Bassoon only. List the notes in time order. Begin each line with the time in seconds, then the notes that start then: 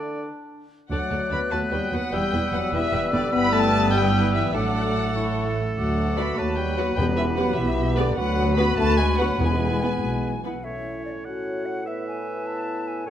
Already playing: D3
0.91 F#3
2.12 G3
4.54 A3
6.38 F#3
6.98 B3
9.39 B3
10.65 A2
13.07 A2